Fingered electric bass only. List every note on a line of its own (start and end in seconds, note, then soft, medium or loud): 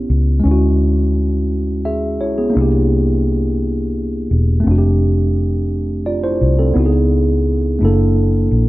0.10 0.41 C#2 medium
0.45 2.21 D2 medium
2.21 2.52 B1 medium
2.56 4.27 C2 medium
4.31 4.62 E1 medium
4.67 6.37 F1 medium
6.41 6.72 C2 medium
6.76 7.77 C#2 medium
7.81 8.47 F#1 medium
8.51 8.69 A#1 medium